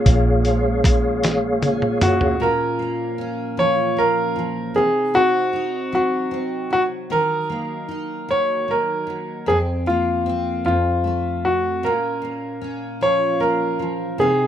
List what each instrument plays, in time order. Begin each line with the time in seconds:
Already playing: steel-string acoustic guitar F3 G#3 C#4, tonewheel organ A#3 G#4 C#5 F5
0.06 fingered electric bass A#1, steel-string acoustic guitar A#2, kick, closed hi-hat
0.45 steel-string acoustic guitar F3, closed hi-hat
0.84 steel-string acoustic guitar G#3, kick, cross-stick, closed hi-hat
1.23 snare, closed hi-hat
1.62 steel-string acoustic guitar C#4, closed hi-hat, high tom
1.82 mid tom
2.01 steel-string acoustic guitar G#3, grand piano F#4, closed hi-hat, mid tom
2.21 floor tom
2.40 steel-string acoustic guitar A#2 C#4, grand piano A#4
2.79 steel-string acoustic guitar A#3
3.18 steel-string acoustic guitar C#4
3.57 steel-string acoustic guitar F3, grand piano C#5
3.97 steel-string acoustic guitar A#3, grand piano A#4
4.36 steel-string acoustic guitar F3
4.74 steel-string acoustic guitar C3 D#4, grand piano G#4
5.14 steel-string acoustic guitar C4, grand piano F#4
5.53 steel-string acoustic guitar D#4
5.92 steel-string acoustic guitar F#3, grand piano F#4
6.31 steel-string acoustic guitar C4
6.70 steel-string acoustic guitar F#3, grand piano F#4
7.10 steel-string acoustic guitar D#3 D#4, grand piano A#4
7.50 steel-string acoustic guitar A#3
7.88 steel-string acoustic guitar D#4
8.28 steel-string acoustic guitar F#3, grand piano C#5
8.68 steel-string acoustic guitar A#3, grand piano A#4
9.07 steel-string acoustic guitar F#3
9.46 steel-string acoustic guitar F2 C4, grand piano G#4
9.86 steel-string acoustic guitar A#3, grand piano F4
10.26 steel-string acoustic guitar C4
10.65 steel-string acoustic guitar F2, grand piano F4
11.04 steel-string acoustic guitar A3
11.45 grand piano F#4
11.83 steel-string acoustic guitar A#2 C#4, grand piano A#4
12.22 steel-string acoustic guitar A#3
12.61 steel-string acoustic guitar C#4
13.01 steel-string acoustic guitar F3, grand piano C#5
13.40 steel-string acoustic guitar A#3, grand piano A#4
13.79 steel-string acoustic guitar F3
14.18 steel-string acoustic guitar C3 D#4, grand piano G#4